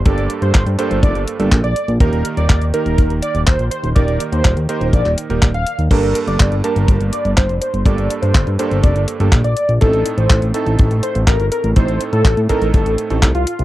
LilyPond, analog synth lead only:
\new Staff \with { instrumentName = "Analog synth lead" } { \time 4/4 \key g \minor \tempo 4 = 123 d''8 r16 c''8 r16 c''8 d''8 r8. d''8 r16 | bes'8 r16 d''8 r16 bes'8. r16 d''8 c''8 c''8 | d''8 r16 c''8 r16 c''8 d''8 r8. f''8 r16 | bes'8 r16 d''8 r16 bes'8. r16 d''8 c''8 c''8 |
d''8 r16 c''8 r16 c''8 d''8 r8. d''8 r16 | a'8 r16 c''8 r16 a'8. r16 c''8 bes'8 bes'8 | c''8 r16 a'8 r16 bes'8 a'8 r8. f'8 r16 | }